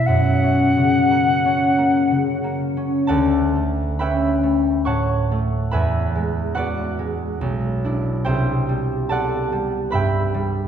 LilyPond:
<<
  \new Staff \with { instrumentName = "Flute" } { \time 3/4 \key fis \major \tempo 4 = 70 fis''2~ fis''8 r8 | \key d \major r2. | r2. | r2. | }
  \new Staff \with { instrumentName = "Harp" } { \time 3/4 \key fis \major r2. | \key d \major <a' d'' fis'' a''>4 <b' e'' g'' b''>4 <cis'' fis'' a'' cis'''>4 | <b' e'' gis'' b''>4 <fis' b' d'' fis''>2 | <g' c'' e'' g''>4 <a' d'' fis'' a''>4 <b' e'' g'' b''>4 | }
  \new Staff \with { instrumentName = "Harp" } { \clef bass \time 3/4 \key fis \major \tuplet 3/2 { fis,8 cis'8 cis8 ais8 cis'8 ais8 cis8 ais8 cis'8 } | \key d \major d,8 a8 cis'8 a8 a,8 a8 | e,8 gis8 b8 gis8 b,,8 <d' e'>8 | c,8 g8 b8 g8 g,8 g8 | }
>>